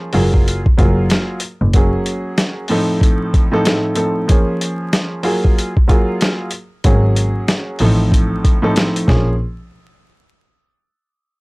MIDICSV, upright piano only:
0, 0, Header, 1, 2, 480
1, 0, Start_track
1, 0, Tempo, 638298
1, 1308, Time_signature, 4, 2, 24, 8
1, 8576, End_track
2, 0, Start_track
2, 0, Title_t, "Upright piano"
2, 0, Program_c, 0, 0
2, 0, Note_on_c, 0, 53, 90
2, 0, Note_on_c, 0, 58, 81
2, 0, Note_on_c, 0, 61, 81
2, 0, Note_on_c, 0, 68, 98
2, 89, Note_off_c, 0, 58, 0
2, 95, Note_on_c, 0, 54, 85
2, 98, Note_off_c, 0, 68, 0
2, 100, Note_on_c, 0, 58, 89
2, 102, Note_off_c, 0, 53, 0
2, 105, Note_on_c, 0, 65, 86
2, 107, Note_off_c, 0, 61, 0
2, 110, Note_on_c, 0, 68, 107
2, 451, Note_off_c, 0, 54, 0
2, 453, Note_off_c, 0, 58, 0
2, 456, Note_off_c, 0, 65, 0
2, 458, Note_off_c, 0, 68, 0
2, 581, Note_on_c, 0, 54, 89
2, 585, Note_on_c, 0, 58, 90
2, 591, Note_on_c, 0, 65, 89
2, 596, Note_on_c, 0, 68, 98
2, 1034, Note_off_c, 0, 54, 0
2, 1036, Note_off_c, 0, 58, 0
2, 1039, Note_off_c, 0, 65, 0
2, 1041, Note_off_c, 0, 68, 0
2, 1306, Note_on_c, 0, 54, 90
2, 1310, Note_on_c, 0, 58, 82
2, 1316, Note_on_c, 0, 61, 83
2, 1321, Note_on_c, 0, 68, 104
2, 2024, Note_on_c, 0, 45, 93
2, 2027, Note_off_c, 0, 54, 0
2, 2028, Note_on_c, 0, 53, 86
2, 2029, Note_off_c, 0, 58, 0
2, 2032, Note_off_c, 0, 61, 0
2, 2032, Note_on_c, 0, 60, 83
2, 2035, Note_off_c, 0, 68, 0
2, 2036, Note_on_c, 0, 63, 87
2, 2040, Note_on_c, 0, 69, 99
2, 2592, Note_off_c, 0, 45, 0
2, 2595, Note_off_c, 0, 53, 0
2, 2596, Note_off_c, 0, 60, 0
2, 2598, Note_off_c, 0, 63, 0
2, 2600, Note_off_c, 0, 69, 0
2, 2643, Note_on_c, 0, 45, 105
2, 2646, Note_on_c, 0, 53, 90
2, 2651, Note_on_c, 0, 60, 82
2, 2655, Note_on_c, 0, 63, 98
2, 2658, Note_on_c, 0, 69, 112
2, 2734, Note_off_c, 0, 45, 0
2, 2737, Note_off_c, 0, 53, 0
2, 2741, Note_off_c, 0, 60, 0
2, 2745, Note_off_c, 0, 63, 0
2, 2745, Note_on_c, 0, 45, 77
2, 2748, Note_off_c, 0, 69, 0
2, 2748, Note_on_c, 0, 53, 74
2, 2752, Note_on_c, 0, 60, 73
2, 2756, Note_on_c, 0, 63, 73
2, 2760, Note_on_c, 0, 69, 85
2, 2959, Note_off_c, 0, 45, 0
2, 2962, Note_off_c, 0, 53, 0
2, 2966, Note_off_c, 0, 60, 0
2, 2969, Note_off_c, 0, 63, 0
2, 2970, Note_on_c, 0, 45, 76
2, 2973, Note_on_c, 0, 53, 77
2, 2974, Note_off_c, 0, 69, 0
2, 2977, Note_on_c, 0, 60, 70
2, 2981, Note_on_c, 0, 63, 71
2, 2985, Note_on_c, 0, 69, 92
2, 3204, Note_off_c, 0, 45, 0
2, 3205, Note_off_c, 0, 53, 0
2, 3207, Note_off_c, 0, 60, 0
2, 3209, Note_off_c, 0, 63, 0
2, 3211, Note_off_c, 0, 69, 0
2, 3218, Note_on_c, 0, 53, 92
2, 3222, Note_on_c, 0, 58, 85
2, 3227, Note_on_c, 0, 61, 85
2, 3233, Note_on_c, 0, 68, 96
2, 3929, Note_off_c, 0, 58, 0
2, 3935, Note_on_c, 0, 54, 87
2, 3939, Note_off_c, 0, 68, 0
2, 3940, Note_on_c, 0, 58, 89
2, 3943, Note_off_c, 0, 53, 0
2, 3945, Note_on_c, 0, 65, 86
2, 3947, Note_off_c, 0, 61, 0
2, 3950, Note_on_c, 0, 68, 109
2, 4291, Note_off_c, 0, 54, 0
2, 4294, Note_off_c, 0, 58, 0
2, 4296, Note_off_c, 0, 65, 0
2, 4299, Note_off_c, 0, 68, 0
2, 4420, Note_on_c, 0, 54, 85
2, 4425, Note_on_c, 0, 58, 90
2, 4430, Note_on_c, 0, 65, 91
2, 4435, Note_on_c, 0, 68, 95
2, 4873, Note_off_c, 0, 54, 0
2, 4876, Note_off_c, 0, 58, 0
2, 4878, Note_off_c, 0, 65, 0
2, 4881, Note_off_c, 0, 68, 0
2, 5144, Note_on_c, 0, 54, 91
2, 5149, Note_on_c, 0, 58, 84
2, 5155, Note_on_c, 0, 61, 85
2, 5159, Note_on_c, 0, 68, 102
2, 5864, Note_on_c, 0, 45, 95
2, 5866, Note_off_c, 0, 54, 0
2, 5867, Note_on_c, 0, 53, 86
2, 5869, Note_off_c, 0, 58, 0
2, 5870, Note_on_c, 0, 60, 81
2, 5871, Note_off_c, 0, 61, 0
2, 5874, Note_off_c, 0, 68, 0
2, 5874, Note_on_c, 0, 63, 87
2, 5878, Note_on_c, 0, 69, 96
2, 6432, Note_off_c, 0, 45, 0
2, 6434, Note_off_c, 0, 53, 0
2, 6436, Note_off_c, 0, 60, 0
2, 6438, Note_off_c, 0, 63, 0
2, 6439, Note_off_c, 0, 69, 0
2, 6482, Note_on_c, 0, 45, 102
2, 6486, Note_on_c, 0, 53, 89
2, 6489, Note_on_c, 0, 60, 83
2, 6493, Note_on_c, 0, 63, 97
2, 6496, Note_on_c, 0, 69, 109
2, 6572, Note_off_c, 0, 45, 0
2, 6575, Note_off_c, 0, 53, 0
2, 6578, Note_off_c, 0, 60, 0
2, 6582, Note_off_c, 0, 63, 0
2, 6583, Note_on_c, 0, 45, 76
2, 6586, Note_off_c, 0, 69, 0
2, 6586, Note_on_c, 0, 53, 73
2, 6589, Note_on_c, 0, 60, 75
2, 6594, Note_on_c, 0, 63, 72
2, 6597, Note_on_c, 0, 69, 81
2, 6810, Note_off_c, 0, 45, 0
2, 6812, Note_off_c, 0, 53, 0
2, 6813, Note_off_c, 0, 60, 0
2, 6815, Note_off_c, 0, 63, 0
2, 6817, Note_off_c, 0, 69, 0
2, 6824, Note_on_c, 0, 53, 86
2, 6827, Note_on_c, 0, 58, 81
2, 6829, Note_on_c, 0, 61, 79
2, 6831, Note_on_c, 0, 68, 99
2, 7013, Note_off_c, 0, 53, 0
2, 7015, Note_off_c, 0, 58, 0
2, 7016, Note_off_c, 0, 61, 0
2, 7017, Note_off_c, 0, 68, 0
2, 8576, End_track
0, 0, End_of_file